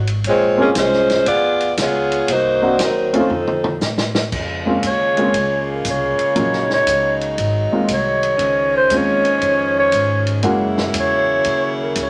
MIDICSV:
0, 0, Header, 1, 8, 480
1, 0, Start_track
1, 0, Key_signature, -5, "minor"
1, 0, Tempo, 509771
1, 226, Time_signature, 4, 2, 24, 8
1, 11391, End_track
2, 0, Start_track
2, 0, Title_t, "Clarinet"
2, 0, Program_c, 0, 71
2, 4584, Note_on_c, 0, 73, 81
2, 5331, Note_off_c, 0, 73, 0
2, 5396, Note_on_c, 0, 70, 52
2, 5546, Note_off_c, 0, 70, 0
2, 5557, Note_on_c, 0, 73, 82
2, 6335, Note_off_c, 0, 73, 0
2, 6345, Note_on_c, 0, 73, 87
2, 6776, Note_off_c, 0, 73, 0
2, 7471, Note_on_c, 0, 73, 80
2, 8214, Note_off_c, 0, 73, 0
2, 8257, Note_on_c, 0, 72, 83
2, 8447, Note_on_c, 0, 73, 82
2, 8461, Note_off_c, 0, 72, 0
2, 9211, Note_off_c, 0, 73, 0
2, 9217, Note_on_c, 0, 73, 92
2, 9650, Note_off_c, 0, 73, 0
2, 10358, Note_on_c, 0, 73, 82
2, 11096, Note_off_c, 0, 73, 0
2, 11147, Note_on_c, 0, 70, 46
2, 11298, Note_off_c, 0, 70, 0
2, 11324, Note_on_c, 0, 73, 86
2, 11391, Note_off_c, 0, 73, 0
2, 11391, End_track
3, 0, Start_track
3, 0, Title_t, "Saxophone section"
3, 0, Program_c, 1, 65
3, 255, Note_on_c, 1, 73, 103
3, 256, Note_on_c, 1, 65, 84
3, 257, Note_on_c, 1, 56, 88
3, 260, Note_on_c, 1, 60, 89
3, 541, Note_off_c, 1, 73, 0
3, 542, Note_off_c, 1, 56, 0
3, 542, Note_off_c, 1, 65, 0
3, 544, Note_off_c, 1, 60, 0
3, 578, Note_on_c, 1, 61, 80
3, 578, Note_on_c, 1, 70, 84
3, 580, Note_on_c, 1, 56, 75
3, 580, Note_on_c, 1, 65, 74
3, 643, Note_off_c, 1, 61, 0
3, 643, Note_off_c, 1, 70, 0
3, 644, Note_off_c, 1, 56, 0
3, 644, Note_off_c, 1, 65, 0
3, 727, Note_on_c, 1, 61, 79
3, 727, Note_on_c, 1, 65, 83
3, 729, Note_on_c, 1, 56, 83
3, 730, Note_on_c, 1, 72, 90
3, 1164, Note_off_c, 1, 61, 0
3, 1164, Note_off_c, 1, 65, 0
3, 1165, Note_off_c, 1, 56, 0
3, 1166, Note_off_c, 1, 72, 0
3, 1192, Note_on_c, 1, 68, 88
3, 1195, Note_on_c, 1, 59, 92
3, 1196, Note_on_c, 1, 74, 114
3, 1199, Note_on_c, 1, 65, 87
3, 1637, Note_off_c, 1, 68, 0
3, 1638, Note_off_c, 1, 59, 0
3, 1639, Note_off_c, 1, 74, 0
3, 1640, Note_off_c, 1, 65, 0
3, 1698, Note_on_c, 1, 59, 82
3, 1701, Note_on_c, 1, 65, 82
3, 1701, Note_on_c, 1, 73, 98
3, 1704, Note_on_c, 1, 68, 86
3, 2163, Note_off_c, 1, 59, 0
3, 2164, Note_off_c, 1, 65, 0
3, 2165, Note_off_c, 1, 73, 0
3, 2166, Note_off_c, 1, 68, 0
3, 2175, Note_on_c, 1, 63, 82
3, 2175, Note_on_c, 1, 72, 101
3, 2178, Note_on_c, 1, 66, 85
3, 2182, Note_on_c, 1, 58, 84
3, 2642, Note_off_c, 1, 63, 0
3, 2642, Note_off_c, 1, 72, 0
3, 2644, Note_off_c, 1, 66, 0
3, 2645, Note_off_c, 1, 58, 0
3, 2660, Note_on_c, 1, 63, 74
3, 2660, Note_on_c, 1, 70, 88
3, 2662, Note_on_c, 1, 54, 77
3, 2664, Note_on_c, 1, 60, 74
3, 2945, Note_off_c, 1, 63, 0
3, 2945, Note_off_c, 1, 70, 0
3, 2946, Note_off_c, 1, 54, 0
3, 2947, Note_off_c, 1, 60, 0
3, 2993, Note_on_c, 1, 60, 65
3, 2993, Note_on_c, 1, 69, 77
3, 2994, Note_on_c, 1, 53, 68
3, 2994, Note_on_c, 1, 63, 69
3, 3573, Note_off_c, 1, 53, 0
3, 3573, Note_off_c, 1, 60, 0
3, 3573, Note_off_c, 1, 63, 0
3, 3573, Note_off_c, 1, 69, 0
3, 11391, End_track
4, 0, Start_track
4, 0, Title_t, "Grand piano"
4, 0, Program_c, 2, 0
4, 540, Note_on_c, 2, 60, 66
4, 541, Note_on_c, 2, 58, 74
4, 548, Note_on_c, 2, 65, 66
4, 552, Note_on_c, 2, 61, 65
4, 556, Note_on_c, 2, 68, 78
4, 687, Note_off_c, 2, 58, 0
4, 687, Note_off_c, 2, 60, 0
4, 690, Note_off_c, 2, 65, 0
4, 693, Note_off_c, 2, 61, 0
4, 695, Note_off_c, 2, 68, 0
4, 2465, Note_on_c, 2, 58, 65
4, 2469, Note_on_c, 2, 60, 61
4, 2470, Note_on_c, 2, 62, 56
4, 2478, Note_on_c, 2, 63, 62
4, 2482, Note_on_c, 2, 66, 71
4, 2610, Note_off_c, 2, 58, 0
4, 2612, Note_off_c, 2, 60, 0
4, 2613, Note_off_c, 2, 62, 0
4, 2617, Note_off_c, 2, 63, 0
4, 2618, Note_off_c, 2, 66, 0
4, 2947, Note_on_c, 2, 60, 62
4, 2951, Note_on_c, 2, 57, 69
4, 2953, Note_on_c, 2, 61, 68
4, 2963, Note_on_c, 2, 63, 65
4, 2963, Note_on_c, 2, 65, 82
4, 3091, Note_off_c, 2, 60, 0
4, 3093, Note_off_c, 2, 57, 0
4, 3094, Note_off_c, 2, 61, 0
4, 3099, Note_off_c, 2, 63, 0
4, 3099, Note_off_c, 2, 65, 0
4, 4382, Note_on_c, 2, 56, 57
4, 4389, Note_on_c, 2, 60, 54
4, 4393, Note_on_c, 2, 58, 54
4, 4396, Note_on_c, 2, 61, 55
4, 4397, Note_on_c, 2, 65, 66
4, 4529, Note_off_c, 2, 56, 0
4, 4532, Note_off_c, 2, 60, 0
4, 4534, Note_off_c, 2, 58, 0
4, 4536, Note_off_c, 2, 61, 0
4, 4537, Note_off_c, 2, 65, 0
4, 4867, Note_on_c, 2, 56, 63
4, 4874, Note_on_c, 2, 58, 55
4, 4874, Note_on_c, 2, 60, 57
4, 4881, Note_on_c, 2, 61, 56
4, 4881, Note_on_c, 2, 65, 66
4, 5012, Note_off_c, 2, 56, 0
4, 5015, Note_off_c, 2, 58, 0
4, 5015, Note_off_c, 2, 60, 0
4, 5019, Note_off_c, 2, 61, 0
4, 5019, Note_off_c, 2, 65, 0
4, 5982, Note_on_c, 2, 58, 51
4, 5984, Note_on_c, 2, 54, 57
4, 5989, Note_on_c, 2, 61, 53
4, 5994, Note_on_c, 2, 63, 50
4, 5994, Note_on_c, 2, 65, 61
4, 6276, Note_off_c, 2, 58, 0
4, 6277, Note_off_c, 2, 54, 0
4, 6279, Note_off_c, 2, 61, 0
4, 6282, Note_off_c, 2, 63, 0
4, 6282, Note_off_c, 2, 65, 0
4, 7273, Note_on_c, 2, 56, 59
4, 7276, Note_on_c, 2, 58, 56
4, 7277, Note_on_c, 2, 60, 53
4, 7282, Note_on_c, 2, 63, 53
4, 7285, Note_on_c, 2, 65, 66
4, 7414, Note_off_c, 2, 56, 0
4, 7416, Note_off_c, 2, 58, 0
4, 7417, Note_off_c, 2, 60, 0
4, 7419, Note_off_c, 2, 63, 0
4, 7420, Note_off_c, 2, 65, 0
4, 8395, Note_on_c, 2, 56, 51
4, 8395, Note_on_c, 2, 60, 46
4, 8401, Note_on_c, 2, 61, 45
4, 8403, Note_on_c, 2, 63, 45
4, 8408, Note_on_c, 2, 65, 54
4, 8681, Note_off_c, 2, 56, 0
4, 8681, Note_off_c, 2, 60, 0
4, 8684, Note_off_c, 2, 61, 0
4, 8685, Note_off_c, 2, 63, 0
4, 8688, Note_off_c, 2, 65, 0
4, 9819, Note_on_c, 2, 56, 65
4, 9822, Note_on_c, 2, 58, 62
4, 9824, Note_on_c, 2, 61, 59
4, 9828, Note_on_c, 2, 64, 59
4, 9831, Note_on_c, 2, 66, 71
4, 10560, Note_off_c, 2, 56, 0
4, 10561, Note_off_c, 2, 58, 0
4, 10563, Note_off_c, 2, 61, 0
4, 10564, Note_off_c, 2, 64, 0
4, 10566, Note_off_c, 2, 66, 0
4, 11391, End_track
5, 0, Start_track
5, 0, Title_t, "Saxophone section"
5, 0, Program_c, 3, 65
5, 4055, Note_on_c, 3, 56, 69
5, 4060, Note_on_c, 3, 58, 66
5, 4063, Note_on_c, 3, 49, 72
5, 4065, Note_on_c, 3, 65, 77
5, 5964, Note_off_c, 3, 56, 0
5, 5969, Note_off_c, 3, 65, 0
5, 5983, Note_on_c, 3, 63, 84
5, 5987, Note_on_c, 3, 54, 63
5, 6916, Note_off_c, 3, 58, 0
5, 6918, Note_off_c, 3, 49, 0
5, 6924, Note_off_c, 3, 54, 0
5, 6935, Note_on_c, 3, 56, 66
5, 6936, Note_on_c, 3, 54, 66
5, 6949, Note_on_c, 3, 51, 72
5, 7883, Note_on_c, 3, 53, 71
5, 7886, Note_off_c, 3, 63, 0
5, 7887, Note_on_c, 3, 61, 86
5, 7892, Note_off_c, 3, 54, 0
5, 9791, Note_off_c, 3, 56, 0
5, 9795, Note_off_c, 3, 53, 0
5, 9797, Note_off_c, 3, 61, 0
5, 9798, Note_off_c, 3, 51, 0
5, 9814, Note_on_c, 3, 49, 78
5, 9815, Note_on_c, 3, 58, 69
5, 9820, Note_on_c, 3, 54, 70
5, 9821, Note_on_c, 3, 64, 85
5, 11391, Note_off_c, 3, 49, 0
5, 11391, Note_off_c, 3, 54, 0
5, 11391, Note_off_c, 3, 58, 0
5, 11391, Note_off_c, 3, 64, 0
5, 11391, End_track
6, 0, Start_track
6, 0, Title_t, "Upright bass"
6, 0, Program_c, 4, 32
6, 0, Note_on_c, 4, 32, 94
6, 213, Note_off_c, 4, 32, 0
6, 231, Note_on_c, 4, 34, 81
6, 695, Note_off_c, 4, 34, 0
6, 707, Note_on_c, 4, 36, 90
6, 1173, Note_off_c, 4, 36, 0
6, 1189, Note_on_c, 4, 38, 86
6, 1654, Note_off_c, 4, 38, 0
6, 1670, Note_on_c, 4, 37, 93
6, 2135, Note_off_c, 4, 37, 0
6, 2148, Note_on_c, 4, 36, 80
6, 2614, Note_off_c, 4, 36, 0
6, 2628, Note_on_c, 4, 39, 88
6, 3094, Note_off_c, 4, 39, 0
6, 3106, Note_on_c, 4, 41, 76
6, 3573, Note_off_c, 4, 41, 0
6, 3591, Note_on_c, 4, 45, 88
6, 4056, Note_off_c, 4, 45, 0
6, 4071, Note_on_c, 4, 41, 80
6, 4536, Note_off_c, 4, 41, 0
6, 4545, Note_on_c, 4, 39, 82
6, 5013, Note_off_c, 4, 39, 0
6, 5029, Note_on_c, 4, 37, 77
6, 5495, Note_off_c, 4, 37, 0
6, 5510, Note_on_c, 4, 36, 89
6, 5809, Note_off_c, 4, 36, 0
6, 5989, Note_on_c, 4, 34, 81
6, 6455, Note_off_c, 4, 34, 0
6, 6466, Note_on_c, 4, 37, 90
6, 6934, Note_off_c, 4, 37, 0
6, 6947, Note_on_c, 4, 32, 78
6, 7248, Note_off_c, 4, 32, 0
6, 7426, Note_on_c, 4, 36, 91
6, 7893, Note_off_c, 4, 36, 0
6, 7899, Note_on_c, 4, 37, 78
6, 8369, Note_off_c, 4, 37, 0
6, 8383, Note_on_c, 4, 39, 91
6, 8851, Note_off_c, 4, 39, 0
6, 8862, Note_on_c, 4, 41, 83
6, 9330, Note_off_c, 4, 41, 0
6, 9343, Note_on_c, 4, 44, 94
6, 9810, Note_off_c, 4, 44, 0
6, 9820, Note_on_c, 4, 42, 84
6, 10289, Note_off_c, 4, 42, 0
6, 10301, Note_on_c, 4, 40, 88
6, 10769, Note_off_c, 4, 40, 0
6, 10782, Note_on_c, 4, 39, 81
6, 11249, Note_off_c, 4, 39, 0
6, 11261, Note_on_c, 4, 37, 92
6, 11391, Note_off_c, 4, 37, 0
6, 11391, End_track
7, 0, Start_track
7, 0, Title_t, "Muted upright bass strokes"
7, 5826, Note_on_c, 9, 29, 39
7, 5920, Note_off_c, 9, 29, 0
7, 7267, Note_on_c, 9, 29, 36
7, 7361, Note_off_c, 9, 29, 0
7, 11391, End_track
8, 0, Start_track
8, 0, Title_t, "Drums"
8, 69, Note_on_c, 9, 51, 52
8, 164, Note_off_c, 9, 51, 0
8, 228, Note_on_c, 9, 51, 59
8, 232, Note_on_c, 9, 36, 20
8, 322, Note_off_c, 9, 51, 0
8, 326, Note_off_c, 9, 36, 0
8, 708, Note_on_c, 9, 44, 64
8, 708, Note_on_c, 9, 51, 70
8, 711, Note_on_c, 9, 36, 21
8, 711, Note_on_c, 9, 38, 73
8, 802, Note_off_c, 9, 44, 0
8, 802, Note_off_c, 9, 51, 0
8, 805, Note_off_c, 9, 36, 0
8, 806, Note_off_c, 9, 38, 0
8, 875, Note_on_c, 9, 38, 30
8, 969, Note_off_c, 9, 38, 0
8, 1033, Note_on_c, 9, 51, 48
8, 1039, Note_on_c, 9, 38, 47
8, 1127, Note_off_c, 9, 51, 0
8, 1133, Note_off_c, 9, 38, 0
8, 1188, Note_on_c, 9, 51, 65
8, 1192, Note_on_c, 9, 36, 23
8, 1282, Note_off_c, 9, 51, 0
8, 1286, Note_off_c, 9, 36, 0
8, 1511, Note_on_c, 9, 51, 51
8, 1605, Note_off_c, 9, 51, 0
8, 1671, Note_on_c, 9, 44, 61
8, 1671, Note_on_c, 9, 51, 73
8, 1672, Note_on_c, 9, 36, 22
8, 1675, Note_on_c, 9, 38, 70
8, 1765, Note_off_c, 9, 44, 0
8, 1765, Note_off_c, 9, 51, 0
8, 1766, Note_off_c, 9, 36, 0
8, 1769, Note_off_c, 9, 38, 0
8, 1993, Note_on_c, 9, 51, 48
8, 2087, Note_off_c, 9, 51, 0
8, 2148, Note_on_c, 9, 51, 65
8, 2151, Note_on_c, 9, 36, 18
8, 2242, Note_off_c, 9, 51, 0
8, 2245, Note_off_c, 9, 36, 0
8, 2627, Note_on_c, 9, 44, 58
8, 2627, Note_on_c, 9, 51, 70
8, 2631, Note_on_c, 9, 36, 27
8, 2631, Note_on_c, 9, 38, 72
8, 2721, Note_off_c, 9, 44, 0
8, 2721, Note_off_c, 9, 51, 0
8, 2725, Note_off_c, 9, 36, 0
8, 2725, Note_off_c, 9, 38, 0
8, 2953, Note_on_c, 9, 51, 48
8, 3047, Note_off_c, 9, 51, 0
8, 3106, Note_on_c, 9, 47, 47
8, 3200, Note_off_c, 9, 47, 0
8, 3270, Note_on_c, 9, 47, 61
8, 3365, Note_off_c, 9, 47, 0
8, 3427, Note_on_c, 9, 47, 75
8, 3521, Note_off_c, 9, 47, 0
8, 3587, Note_on_c, 9, 44, 59
8, 3590, Note_on_c, 9, 38, 67
8, 3681, Note_off_c, 9, 44, 0
8, 3684, Note_off_c, 9, 38, 0
8, 3745, Note_on_c, 9, 38, 77
8, 3839, Note_off_c, 9, 38, 0
8, 3905, Note_on_c, 9, 38, 92
8, 3999, Note_off_c, 9, 38, 0
8, 4069, Note_on_c, 9, 49, 66
8, 4070, Note_on_c, 9, 36, 66
8, 4163, Note_off_c, 9, 49, 0
8, 4165, Note_off_c, 9, 36, 0
8, 4546, Note_on_c, 9, 44, 57
8, 4546, Note_on_c, 9, 51, 71
8, 4550, Note_on_c, 9, 36, 18
8, 4640, Note_off_c, 9, 44, 0
8, 4640, Note_off_c, 9, 51, 0
8, 4644, Note_off_c, 9, 36, 0
8, 4868, Note_on_c, 9, 51, 43
8, 4963, Note_off_c, 9, 51, 0
8, 5028, Note_on_c, 9, 51, 64
8, 5031, Note_on_c, 9, 36, 23
8, 5122, Note_off_c, 9, 51, 0
8, 5125, Note_off_c, 9, 36, 0
8, 5505, Note_on_c, 9, 44, 56
8, 5505, Note_on_c, 9, 51, 63
8, 5510, Note_on_c, 9, 36, 21
8, 5599, Note_off_c, 9, 44, 0
8, 5599, Note_off_c, 9, 51, 0
8, 5604, Note_off_c, 9, 36, 0
8, 5826, Note_on_c, 9, 51, 47
8, 5921, Note_off_c, 9, 51, 0
8, 5985, Note_on_c, 9, 51, 57
8, 5990, Note_on_c, 9, 36, 18
8, 6080, Note_off_c, 9, 51, 0
8, 6085, Note_off_c, 9, 36, 0
8, 6147, Note_on_c, 9, 38, 27
8, 6241, Note_off_c, 9, 38, 0
8, 6308, Note_on_c, 9, 38, 43
8, 6402, Note_off_c, 9, 38, 0
8, 6467, Note_on_c, 9, 44, 67
8, 6467, Note_on_c, 9, 51, 69
8, 6469, Note_on_c, 9, 36, 27
8, 6561, Note_off_c, 9, 44, 0
8, 6561, Note_off_c, 9, 51, 0
8, 6563, Note_off_c, 9, 36, 0
8, 6792, Note_on_c, 9, 51, 44
8, 6886, Note_off_c, 9, 51, 0
8, 6948, Note_on_c, 9, 51, 59
8, 6950, Note_on_c, 9, 36, 24
8, 7042, Note_off_c, 9, 51, 0
8, 7045, Note_off_c, 9, 36, 0
8, 7424, Note_on_c, 9, 44, 58
8, 7424, Note_on_c, 9, 51, 72
8, 7428, Note_on_c, 9, 36, 25
8, 7518, Note_off_c, 9, 44, 0
8, 7518, Note_off_c, 9, 51, 0
8, 7522, Note_off_c, 9, 36, 0
8, 7748, Note_on_c, 9, 51, 45
8, 7842, Note_off_c, 9, 51, 0
8, 7901, Note_on_c, 9, 51, 56
8, 7906, Note_on_c, 9, 36, 20
8, 7995, Note_off_c, 9, 51, 0
8, 8000, Note_off_c, 9, 36, 0
8, 8381, Note_on_c, 9, 44, 58
8, 8381, Note_on_c, 9, 51, 71
8, 8385, Note_on_c, 9, 36, 24
8, 8475, Note_off_c, 9, 44, 0
8, 8475, Note_off_c, 9, 51, 0
8, 8479, Note_off_c, 9, 36, 0
8, 8708, Note_on_c, 9, 51, 46
8, 8802, Note_off_c, 9, 51, 0
8, 8866, Note_on_c, 9, 51, 56
8, 8867, Note_on_c, 9, 36, 19
8, 8960, Note_off_c, 9, 51, 0
8, 8961, Note_off_c, 9, 36, 0
8, 9341, Note_on_c, 9, 44, 53
8, 9341, Note_on_c, 9, 51, 66
8, 9346, Note_on_c, 9, 36, 24
8, 9435, Note_off_c, 9, 44, 0
8, 9435, Note_off_c, 9, 51, 0
8, 9440, Note_off_c, 9, 36, 0
8, 9667, Note_on_c, 9, 51, 47
8, 9761, Note_off_c, 9, 51, 0
8, 9818, Note_on_c, 9, 51, 56
8, 9825, Note_on_c, 9, 36, 26
8, 9912, Note_off_c, 9, 51, 0
8, 9919, Note_off_c, 9, 36, 0
8, 10147, Note_on_c, 9, 38, 59
8, 10241, Note_off_c, 9, 38, 0
8, 10299, Note_on_c, 9, 44, 51
8, 10299, Note_on_c, 9, 51, 73
8, 10305, Note_on_c, 9, 36, 19
8, 10393, Note_off_c, 9, 44, 0
8, 10393, Note_off_c, 9, 51, 0
8, 10399, Note_off_c, 9, 36, 0
8, 10776, Note_on_c, 9, 51, 58
8, 10785, Note_on_c, 9, 36, 24
8, 10870, Note_off_c, 9, 51, 0
8, 10879, Note_off_c, 9, 36, 0
8, 11257, Note_on_c, 9, 44, 50
8, 11257, Note_on_c, 9, 51, 68
8, 11265, Note_on_c, 9, 36, 25
8, 11351, Note_off_c, 9, 44, 0
8, 11351, Note_off_c, 9, 51, 0
8, 11359, Note_off_c, 9, 36, 0
8, 11391, End_track
0, 0, End_of_file